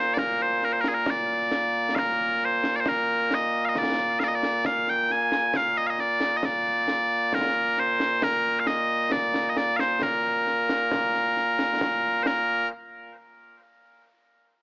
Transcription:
0.00 12.68 A#2 medium
0.00 12.68 A#3 medium
0.00 0.14 C5 loud
0.14 0.18 D5 medium
0.14 concert bass drum medium
0.14 snare medium
0.18 0.42 A#4 medium
0.42 0.64 C5 medium
0.62 0.73 A#4 medium
0.62 snare soft
0.73 0.81 C5 medium
0.81 0.88 A#4 medium
0.81 snare medium
0.88 0.94 G#4 medium
0.94 1.10 A#4 medium
1.06 1.95 D5 medium
1.06 concert bass drum medium
1.06 snare loud
1.51 snare medium
1.95 2.45 A#4 loud
1.95 1.99 F5 loud
1.95 concert bass drum medium
1.95 snare loud
2.45 2.76 C5 medium
2.64 snare medium
2.76 2.80 D5 medium
2.80 2.88 C5 medium
2.86 3.34 A#4 loud
2.86 concert bass drum medium
2.86 snare loud
3.31 3.65 D#5 loud
3.31 snare medium
3.65 3.78 D#5 medium
3.65 3.69 F5 medium
3.75 4.20 D5 medium
3.75 concert bass drum medium
3.75 snare medium
4.20 4.24 F5 medium
4.20 snare medium
4.24 4.28 D5 medium
4.24 4.35 D#5 medium
4.35 4.66 D5 medium
4.43 snare medium
4.65 4.89 F5 loud
4.65 concert bass drum medium
4.65 snare medium
4.87 5.12 G5 loud
4.87 snare soft
5.10 5.57 G#5 loud
5.10 snare soft
5.32 snare medium
5.54 5.78 F5 loud
5.54 concert bass drum soft
5.54 snare medium
5.78 5.87 D#5 medium
5.87 6.00 D#5 medium
5.87 5.90 F5 medium
5.99 6.37 D5 loud
5.99 snare soft
6.21 snare medium
6.37 6.45 D#5 medium
6.43 7.34 D5 loud
6.43 concert bass drum medium
6.43 snare medium
6.88 snare medium
7.33 7.79 A#4 medium
7.33 concert bass drum medium
7.33 snare loud
7.77 8.23 C5 loud
7.77 snare soft
8.00 snare medium
8.22 8.60 A#4 loud
8.22 concert bass drum soft
8.22 snare loud
8.60 8.67 F5 medium
8.67 9.12 D#5 loud
8.67 snare medium
9.12 9.49 D5 medium
9.12 concert bass drum medium
9.12 snare loud
9.34 snare medium
9.49 9.57 D#5 medium
9.57 9.76 D5 medium
9.57 snare medium
9.76 10.03 C5 loud
9.76 9.80 F5 loud
9.76 snare medium
10.02 12.23 A#4 medium
10.02 concert bass drum medium
10.02 snare medium
10.47 snare soft
10.69 snare medium
10.92 concert bass drum medium
10.92 snare loud
11.14 snare soft
11.37 snare soft
11.59 snare medium
11.81 concert bass drum medium
11.81 snare loud
12.23 12.68 A#4 medium
12.23 12.27 C5 medium
12.23 snare medium

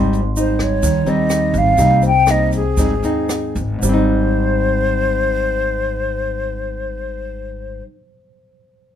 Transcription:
0.00 0.79 G#1 loud
0.00 0.81 G#2 medium
0.00 0.20 G3 medium
0.00 0.20 C4 medium
0.00 0.20 D#4 medium
0.00 1.18 C6 medium
0.13 closed hi-hat soft
0.13 shaker soft
0.36 1.03 G3 medium
0.36 1.03 D#4 medium
0.36 0.64 C5 medium
0.36 closed hi-hat soft
0.36 shaker medium
0.59 1.11 C#5 loud
0.59 kick soft
0.59 cross-stick medium
0.59 closed hi-hat soft
0.59 shaker soft
0.83 1.05 D#2 loud
0.83 1.76 D#3 medium
0.83 kick medium
0.83 closed hi-hat medium
0.83 shaker medium
1.06 1.55 D#2 medium
1.06 1.75 G3 medium
1.06 1.75 C4 medium
1.06 1.75 D#4 medium
1.06 1.59 D#5 medium
1.06 closed hi-hat soft
1.06 shaker soft
1.30 cross-stick medium
1.30 closed hi-hat soft
1.30 shaker medium
1.54 1.76 G#1 loud
1.54 kick soft
1.54 closed hi-hat soft
1.54 shaker soft
1.58 2.05 F5 medium
1.78 2.74 C2 medium
1.78 2.75 C3 medium
1.78 2.10 G3 medium
1.78 2.10 A#3 medium
1.78 2.10 D#4 medium
1.78 kick medium
1.78 closed hi-hat medium
1.78 shaker medium
2.02 3.00 C5 soft
2.02 closed hi-hat soft
2.02 shaker soft
2.07 2.32 G5 loud
2.27 2.61 G3 medium
2.27 2.61 A#3 medium
2.27 2.62 D#4 medium
2.27 2.54 D#5 loud
2.27 cross-stick medium
2.27 closed hi-hat soft
2.27 shaker medium
2.52 3.53 G#4 medium
2.52 kick soft
2.52 closed hi-hat soft
2.52 shaker soft
2.77 3.01 G#1 loud
2.77 3.78 G#2 medium
2.77 2.93 G3 medium
2.77 2.93 C4 medium
2.77 2.94 D#4 medium
2.77 kick medium
2.77 closed hi-hat medium
2.77 shaker medium
3.03 3.57 D#2 medium
3.03 3.79 C4 medium
3.03 3.79 D#4 medium
3.03 closed hi-hat soft
3.03 shaker soft
3.29 cross-stick medium
3.29 closed hi-hat soft
3.29 shaker medium
3.55 3.81 G#1 loud
3.55 kick soft
3.55 closed hi-hat soft
3.55 shaker soft
3.79 7.80 G#1 medium
3.79 7.80 G#2 medium
3.79 shaker medium
3.83 7.86 G3 medium
3.83 7.81 C5 soft
3.83 7.83 C5 medium
3.89 7.91 C4 medium
3.94 7.95 D#4 medium

